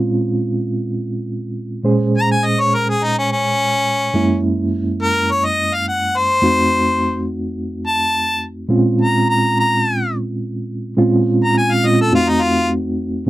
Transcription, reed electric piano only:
0.00 1.81 A#2 medium
0.00 1.81 G#3 medium
0.00 1.81 C4 medium
0.00 1.82 C#4 medium
0.00 1.82 F4 medium
1.84 4.09 A#2 medium
1.84 4.09 G#3 medium
1.84 4.09 C#4 medium
1.84 4.10 G#4 medium
1.84 4.09 C5 medium
4.14 6.38 F#2 medium
4.14 6.38 G#3 medium
4.14 6.38 A#3 medium
4.14 6.38 C#4 medium
4.14 6.39 E4 medium
6.42 8.66 F2 medium
6.42 8.66 A3 medium
6.42 8.66 C4 medium
6.42 8.66 D#4 medium
6.42 8.67 F#4 medium
8.69 10.93 A#2 medium
8.69 10.93 G#3 medium
8.69 10.94 C4 medium
8.69 10.94 C#4 medium
8.69 10.94 F4 medium
10.97 11.82 A#2 medium
10.97 11.82 G#3 medium
10.97 11.83 C4 medium
10.97 11.83 C#4 medium
10.97 11.83 F4 medium
11.83 12.12 A#2 soft
11.83 12.12 G#3 soft
11.83 12.11 C4 soft
11.83 12.12 C#4 soft
11.83 12.12 F4 medium
12.11 13.23 F2 medium
12.11 13.24 A3 medium
12.11 13.24 C4 medium
12.11 13.24 D#4 medium
12.11 13.24 F#4 medium
13.26 13.30 A#2 medium
13.26 13.30 G#3 medium

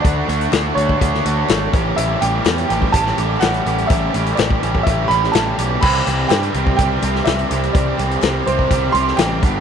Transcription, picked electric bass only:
0.05 0.22 D2 medium
0.28 0.46 D2 medium
0.52 0.70 D2 medium
0.76 0.94 D2 medium
1.02 1.19 D2 medium
1.25 1.43 D2 medium
1.49 1.67 G#1 medium
1.73 1.91 A1 medium
1.97 2.15 A1 loud
2.22 2.39 A1 medium
2.45 2.63 E2 medium
2.70 2.88 A1 medium
2.94 3.11 A1 medium
3.18 3.35 A1 medium
3.42 3.59 A1 medium
3.66 3.83 A1 medium
3.90 4.08 A1 medium
4.14 4.32 A1 medium
4.39 4.56 A1 medium
4.62 4.80 A1 medium
4.87 5.04 A1 medium
5.10 5.28 A1 medium
5.35 5.52 A1 medium
5.58 5.76 B1 medium
5.83 6.00 C2 medium
6.07 6.24 C2 medium
6.30 6.48 G2 medium
6.54 6.72 C2 medium
6.79 6.96 C2 medium
7.03 7.20 C2 medium
7.27 7.44 C2 loud
7.51 7.68 C2 medium
7.75 7.92 C2 medium
7.98 8.16 C2 medium
8.23 8.40 C2 loud
8.47 8.64 C2 medium
8.71 8.88 C2 medium
8.94 9.12 C2 medium
9.18 9.45 A1 loud
9.43 9.60 G1 medium

